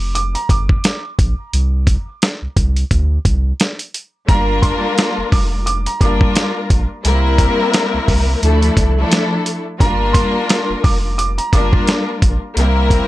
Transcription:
Already playing: sub bass F1, upright piano D6
0.15 upright piano D6, closed hi-hat
0.35 upright piano A#5, closed hi-hat
0.49 sub bass G1, upright piano D6, kick, closed hi-hat
0.69 kick
0.84 snare, closed hi-hat
1.19 sub bass A#1, kick, closed hi-hat
1.53 sub bass C2, closed hi-hat
1.87 kick, closed hi-hat
2.22 snare, closed hi-hat
2.42 sub bass C2
2.57 sub bass C2, kick, closed hi-hat
2.76 closed hi-hat
2.91 sub bass D2, kick, closed hi-hat
3.25 sub bass C2, kick, closed hi-hat
3.60 snare, closed hi-hat
3.79 closed hi-hat
3.94 closed hi-hat
4.27 sub bass G1, string section G3 A#3 D4 F4 A#4, upright piano A#5, kick, closed hi-hat
4.62 upright piano C6, kick, closed hi-hat
4.98 snare, closed hi-hat
5.17 sub bass F1
5.32 sub bass F1, upright piano D6, kick, open hi-hat
5.66 upright piano D6, closed hi-hat
5.86 upright piano A#5, closed hi-hat
6.00 sub bass G1, string section G3 A#3 D4 F4 A#4, upright piano D6, kick, closed hi-hat
6.21 kick
6.35 snare, closed hi-hat
6.70 sub bass A#1, kick, closed hi-hat
7.04 sub bass C2, string section G3 A#3 C4 E4 A#4, closed hi-hat
7.38 kick, closed hi-hat
7.74 snare, closed hi-hat
7.94 sub bass C2
8.08 sub bass C2, kick, open hi-hat
8.41 sub bass D2, string section F3 A3 D4 E4 A4, closed hi-hat
8.62 closed hi-hat
8.77 sub bass C2, kick, closed hi-hat
8.97 string section F3 A3 D4 E4 A4
9.12 snare, closed hi-hat
9.46 closed hi-hat
9.79 sub bass G1, string section G3 A#3 D4 F4 A#4, upright piano A#5, kick, closed hi-hat
10.13 upright piano C6, kick, closed hi-hat
10.49 snare, closed hi-hat
10.69 sub bass F1
10.84 sub bass F1, upright piano D6, kick, open hi-hat
11.18 upright piano D6, closed hi-hat
11.38 upright piano A#5, closed hi-hat
11.52 sub bass G1, string section G3 A#3 D4 F4 A#4, upright piano D6, kick, closed hi-hat
11.73 kick
11.87 snare, closed hi-hat
12.22 sub bass A#1, kick, closed hi-hat
12.56 sub bass C2, string section G3 A#3 C4 E4 A#4, closed hi-hat
12.90 kick, closed hi-hat

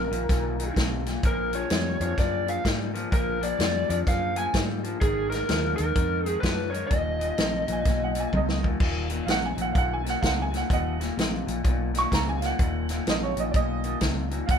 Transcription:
Already playing: lead electric guitar A#4
0.11 fingered electric bass A#1, clean electric guitar D#2 A#2, closed hi-hat
0.29 fingered electric bass B1, clean electric guitar D#2 A#2, kick, snare, closed hi-hat
0.59 clean electric guitar D#2 A#2, closed hi-hat
0.76 fingered electric bass B1, clean electric guitar D#2 C3, kick, snare, closed hi-hat
1.06 clean electric guitar D#2 A#2, snare, closed hi-hat
1.23 fingered electric bass A#1, clean electric guitar A#2 F3, lead electric guitar A#4, kick, closed hi-hat
1.53 clean electric guitar A#2 F3, lead electric guitar C#5, closed hi-hat
1.70 fingered electric bass F2, clean electric guitar A#2 G3, snare, closed hi-hat
2.00 fingered electric bass F2, clean electric guitar A#2 F3, lead electric guitar C#5, closed hi-hat
2.18 fingered electric bass F#2, clean electric guitar A#2 F3, lead electric guitar D5, kick, snare, closed hi-hat
2.47 clean electric guitar A#2 F3, lead electric guitar F5, closed hi-hat
2.64 fingered electric bass G#2, clean electric guitar A#2 G3, kick, snare, closed hi-hat
2.94 clean electric guitar A#2 F3, closed hi-hat
3.11 fingered electric bass A#1, clean electric guitar A#2 F3, lead electric guitar A#4, kick, closed hi-hat
3.41 clean electric guitar A#2 F3, lead electric guitar D5, closed hi-hat
3.59 fingered electric bass F2, clean electric guitar A#2 G3, snare, closed hi-hat
3.89 fingered electric bass F2, clean electric guitar A#2 F3, lead electric guitar D5, closed hi-hat
4.07 fingered electric bass F#2, clean electric guitar A#2 F3, lead electric guitar F5, kick, snare, closed hi-hat
4.36 clean electric guitar A#2 F3, lead electric guitar G#5, closed hi-hat
4.54 fingered electric bass G#2, clean electric guitar A#2 G3, kick, snare, closed hi-hat
4.83 clean electric guitar A#2 F3, closed hi-hat
5.01 fingered electric bass G#1, clean electric guitar G#2 D#3, lead electric guitar G#4, kick, closed hi-hat
5.30 clean electric guitar G#2 D#3, lead electric guitar A#4, snare, closed hi-hat
5.48 fingered electric bass D#2, clean electric guitar G#2 F3, snare, closed hi-hat
5.77 fingered electric bass D#2, clean electric guitar G#2 D#3, lead electric guitar A#4, closed hi-hat
5.96 fingered electric bass F2, clean electric guitar G#2 D#3, kick, closed hi-hat
6.26 clean electric guitar G#2 D#3, lead electric guitar G#4, closed hi-hat
6.41 fingered electric bass F#2, clean electric guitar G#2 F3, lead electric guitar B4, kick, snare, closed hi-hat
6.70 clean electric guitar G#2 D#3, lead electric guitar C#5
6.74 closed hi-hat
6.87 fingered electric bass D#1, clean electric guitar D#2 A#2, lead electric guitar D#5, kick, closed hi-hat
7.19 clean electric guitar D#2 A#2, closed hi-hat
7.38 fingered electric bass A#1, clean electric guitar D#2 C3, snare, closed hi-hat
7.67 fingered electric bass A#1, clean electric guitar D#2 A#2, closed hi-hat
7.72 upright piano G#5
7.85 fingered electric bass B1, clean electric guitar D#2 A#2, kick, snare, closed hi-hat
8.04 upright piano F#5
8.15 clean electric guitar D#2 A#2, closed hi-hat
8.20 upright piano G#5
8.33 fingered electric bass C#2, clean electric guitar D#2 C3, kick, high tom
8.37 upright piano D#5
8.49 snare
8.62 clean electric guitar D#2 A#2, kick
8.80 fingered electric bass D#1, clean electric guitar D#2 A#2, kick, crash
9.10 clean electric guitar D#2 A#2, closed hi-hat
9.26 fingered electric bass A#1, clean electric guitar D#2 C3, upright piano F5, snare, closed hi-hat
9.30 upright piano F#5
9.46 upright piano G#5
9.57 fingered electric bass A#1, clean electric guitar D#2 A#2, closed hi-hat
9.61 upright piano F#5
9.73 fingered electric bass B1, clean electric guitar D#2 A#2, upright piano F5, kick, closed hi-hat
9.78 upright piano F#5
9.93 upright piano G#5
10.04 clean electric guitar D#2 A#2, snare, closed hi-hat
10.10 upright piano F#5
10.21 fingered electric bass C#2, clean electric guitar D#2 C3, upright piano F5, kick, snare, closed hi-hat
10.26 upright piano F#5
10.42 upright piano G#5
10.51 clean electric guitar D#2 A#2, snare, closed hi-hat
10.57 upright piano F#5
10.69 fingered electric bass D#1, clean electric guitar D#2 A#2, upright piano D#5, kick, closed hi-hat
10.73 upright piano F#5
10.99 clean electric guitar D#2 A#2, snare, closed hi-hat
11.17 fingered electric bass A#1, clean electric guitar D#2 C3, snare, closed hi-hat
11.46 fingered electric bass A#1, clean electric guitar D#2 A#2, closed hi-hat
11.64 fingered electric bass B1, clean electric guitar D#2 A#2, kick, closed hi-hat
11.94 clean electric guitar D#2 A#2, snare, closed hi-hat
11.99 upright piano C#6
12.11 fingered electric bass C#2, clean electric guitar D#2 C3, upright piano A#5, kick, snare, closed hi-hat
12.29 upright piano G#5
12.41 clean electric guitar D#2 A#2, upright piano F5, snare, closed hi-hat
12.46 upright piano F#5
12.59 fingered electric bass D#1, clean electric guitar D#2 A#2, kick, closed hi-hat
12.89 clean electric guitar D#2 A#2, snare, closed hi-hat
13.06 fingered electric bass A#1, clean electric guitar D#2 C3, upright piano D#5, snare, closed hi-hat
13.23 upright piano C#5
13.37 fingered electric bass A#1, clean electric guitar D#2 A#2, upright piano D#5, closed hi-hat
13.51 fingered electric bass B1, clean electric guitar D#2 A#2, upright piano D5, kick, closed hi-hat
13.56 upright piano D#5
13.84 clean electric guitar D#2 A#2, closed hi-hat
14.01 fingered electric bass C#2, clean electric guitar D#2 C3, kick, snare, closed hi-hat
14.31 clean electric guitar D#2 A#2, closed hi-hat
14.46 fingered electric bass D#1, clean electric guitar D#2 A#2, upright piano F5, kick, closed hi-hat
14.51 upright piano F#5

